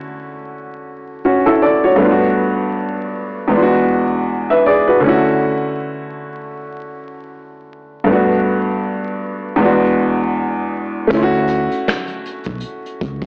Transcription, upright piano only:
Already playing: D3 A3 C#4 E4 F#4
1.25 C#4 F#4
1.46 E4 A4
1.62 A4 D5
1.84 F#4 C#5
1.96 G2 A3
2.00 B3 D4 F4
2.11 F#4
3.48 E2 G#3 B3
3.54 D4 F4
3.62 F#4
4.50 B4 E5
4.66 G#4 D5
4.88 F#4 B4
5.00 D3 A3
5.04 C#4 E4
5.08 F#4
8.04 G2 A3
8.09 B3 D4 F#4
9.56 E2 G#3
9.60 B3 D4
9.65 F#4
11.07 A3 C#4
11.13 E4 F4
11.23 F#4

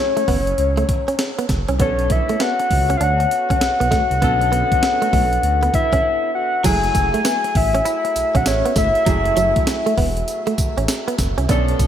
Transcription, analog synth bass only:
0.28 F#1
0.58 C#2
1.49 F#1
1.69 C2
1.80 B1
2.71 C#2
3.01 D2
3.62 B1
3.81 B1
4.11 C2
4.22 B1
5.13 B1
5.43 D2
6.64 F#1
6.95 F#1
7.55 A1
8.16 B1
8.35 B1
8.46 A1
8.76 G1
9.07 F#1
9.37 F#1
9.98 E1
10.58 A1
10.78 A1
11.19 F#1
11.38 C2
11.49 B1
11.80 B1

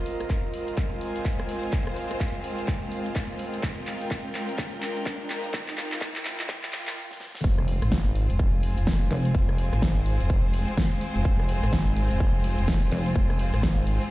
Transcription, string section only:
Already playing: G#3 C4 F4 C5
3.63 A#4
7.44 G#3 C4 F4 C5

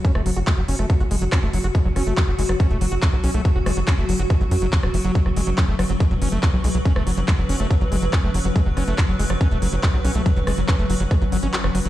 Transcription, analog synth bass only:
0.15 F#1
0.26 F#1
0.36 F#1
0.58 F#1
0.68 F#1
0.79 F#1
1.00 G#1
1.11 F#1
1.22 F#1
1.43 F#1
1.53 F#1
1.64 F#1
1.85 F#1
1.96 F#1
2.07 F#1
2.28 F#1
2.39 F#1
2.49 F#1
2.70 E1
2.81 F#1
2.92 F#1
3.13 B1
3.24 B1
3.34 B1
3.56 F#1
3.66 F#1
3.77 F#1
3.98 F#1
4.09 F#1
4.19 F#1
4.41 G#1
4.51 F#2
4.62 F#1
4.83 E1
4.94 F#1
5.05 F#1
5.26 F#1
5.36 F#1
5.47 F#1
5.68 F#1
5.79 F#1
5.90 F#1
6.11 E1
6.22 F#1
6.32 F#1
6.53 B1
6.64 B1
6.75 B1
6.96 F#1
7.07 F#1
7.17 F#1
7.39 F#1
7.49 F#1
7.60 F#1
7.81 G#1
7.92 F#1
8.02 F#1
8.24 F#1
8.34 F#1
8.45 F#1
8.66 F#1
8.77 F#1
8.88 F#1
9.09 F#1
9.19 F#1
9.30 F#1
9.51 E1
9.62 F#1
9.73 F#1
9.94 B1
10.05 B1
10.15 B1
10.36 F#1
10.47 F#1
10.58 F#1
10.79 F#1
10.90 F#1
11.00 F#1
11.22 G#1
11.32 G#1
11.43 G#1
11.64 F#1
11.75 F#1
11.85 F#1

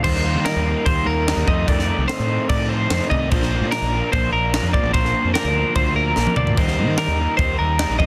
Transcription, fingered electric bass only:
0.05 D#2
0.35 D#3
0.56 D#2
0.86 D#2
1.07 D#2
1.37 D#2
1.48 F2
1.98 C2
2.19 A2
2.50 A2
2.90 F2
3.12 C2
3.32 A#1
3.61 A#2
3.82 A#1
4.13 A#1
4.32 A#1
4.62 F2
4.83 A1
4.94 A#1
5.24 F2
5.44 D2
5.76 D2
6.17 A#1
6.37 D2
6.57 D#2
6.87 D#3
7.08 D#2
7.39 D#2
7.60 D#2
7.90 A#1
8.00 F2

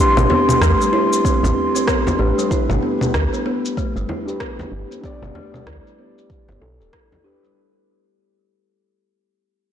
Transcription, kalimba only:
0.17 C4
0.30 B3
0.62 A3
0.81 G3
0.93 E4
1.25 C4
1.75 C4
1.88 B3
2.19 A3
2.38 G3
2.51 E4
2.83 B3
3.33 B3
3.46 B3
3.77 A3
3.96 G3
4.09 E4
4.40 B3
4.91 B3
5.04 B3
5.35 A3
5.54 G3
5.67 E4
5.99 B3
6.49 B3
6.62 A4
6.80 A4
6.93 E4
7.24 G4
7.43 G3

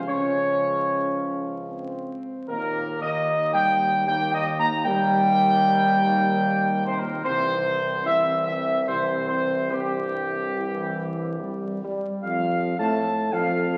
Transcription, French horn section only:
0.07 F3 C#4
1.68 C4
2.48 D#3 A#3
4.07 D#3 A#3
4.85 D#3 A#3
7.24 E3 C4
8.05 E3 C4
8.89 E3 C4
9.71 E3 C4
10.55 E3
11.39 G3
11.82 G3
13.06 A4

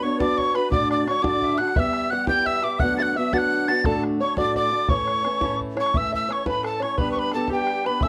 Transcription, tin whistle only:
0.03 C#6
0.21 D6
0.38 C#6
0.56 B5
0.71 D6
0.91 D6
1.07 C#6
1.22 D6
1.58 F#6
1.75 F#6
1.79 E6
2.10 F#6
2.29 G6
2.46 E6
2.64 D6
2.79 F#6
2.98 A6
3.02 F#6
3.17 E6
3.33 A6
3.38 F#6
3.68 A6
3.86 A5
4.21 C#6
4.38 D6
4.56 D6
4.89 C#6
5.80 C#6
5.97 E6
6.15 E6
6.33 C#6
6.48 B5
6.66 A5
6.83 C#6
6.98 B5
7.12 C#6
7.19 B5
7.34 A5
7.53 G5
7.86 B5
8.03 E6

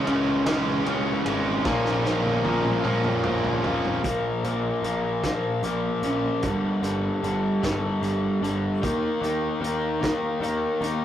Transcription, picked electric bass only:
0.08 C#2
0.47 C#2
0.86 C#2
1.26 G#1
1.65 A#1
2.45 A#1
2.85 A#1
3.24 A#1
3.64 F1
4.04 A#1
4.43 A#1
4.82 A#1
5.63 A#1
6.03 A#1
6.44 G1
6.82 G1
7.23 G1
7.63 G1
8.01 G1
8.41 G1
8.84 D#2
9.21 D#2
9.61 D#2
10.40 D#2
10.81 D#2

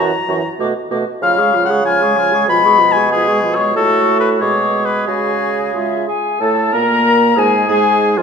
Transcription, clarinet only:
Already playing: F#4
0.28 F#4
0.59 F#4
0.90 F#4
1.22 F4
1.38 G#4
1.55 F4
1.70 G#4
1.86 F4
2.01 G#4
2.17 F4
2.33 G#4
2.49 F4
2.65 G#4
2.80 F4
2.97 G#4
3.12 F4
3.28 G#4
3.43 F4
3.59 G#4
3.76 F#4
4.41 G#4
5.08 F#4
5.74 F4
6.08 G#4
6.40 A4
6.73 A#4
7.37 G#4
7.69 G#4
8.19 F4

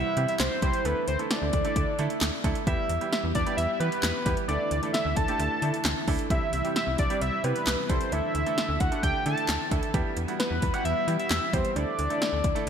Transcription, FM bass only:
0.17 C3
0.40 C2
0.62 C2
0.85 D2
1.08 D2
1.42 D2
1.53 D2
1.76 D2
1.99 D3
2.22 D2
2.44 D2
2.67 E2
2.89 E2
3.24 E2
3.35 E2
3.58 E2
3.80 E3
4.03 E2
4.26 E2
4.49 D2
4.71 D2
5.05 D2
5.17 D2
5.39 D2
5.62 D3
5.85 D2
6.08 D2
6.30 C2
6.53 C2
6.87 C2
6.99 C2
7.21 C2
7.44 C3
7.67 C2
7.90 C2
8.12 D2
8.35 D2
8.69 D2
8.81 D2
9.03 D2
9.26 D3
9.49 D2
9.71 D2
9.94 E2
10.17 E2
10.51 E2
10.62 E2
10.85 E2
11.08 E3
11.30 E2
11.53 E2
11.76 D2
11.99 D2
12.33 D2
12.44 D2

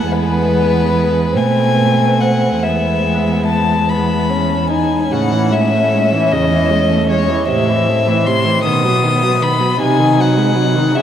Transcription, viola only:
0.10 G#3
1.36 A3
2.63 G#3
5.12 C#3
5.32 E3
5.52 G#3
5.73 A3
5.93 G#3
6.12 E3
6.32 C#3
6.51 E3
6.70 G#3
6.90 A3
7.11 G#3
7.29 E3
7.49 C3
7.69 E3
7.88 A3
8.07 E3
8.27 C3
8.46 E3
8.64 D#3
8.84 F#3
9.03 D#3
9.23 F#3
9.41 D#3
9.61 F#3
9.80 C3
10.00 D#3
10.18 F#3
10.37 G#3
10.55 F#3
10.75 D#3
10.94 C#3

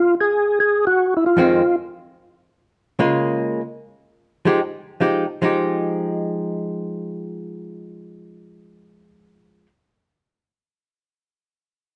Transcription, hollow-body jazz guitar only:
1.37 F2 D#3 G#3 C4
2.99 C#3 G#3 A#3 F4
4.45 F3 G#3 D#4 G4
5.00 F3 G#3 D#4 G4
5.42 F3 G#3 D#4 G4

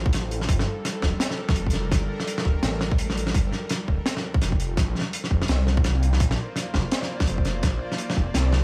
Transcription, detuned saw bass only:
Already playing: A1
0.49 G1
1.02 D1
1.56 F1
1.92 G1
2.45 D1
2.63 A1
3.34 G1
3.88 D1
4.42 F1
4.77 A#1
5.31 F1
5.49 C2
6.20 A#1
6.74 F1
7.27 F1
7.63 A#1
8.17 F1
8.34 C2

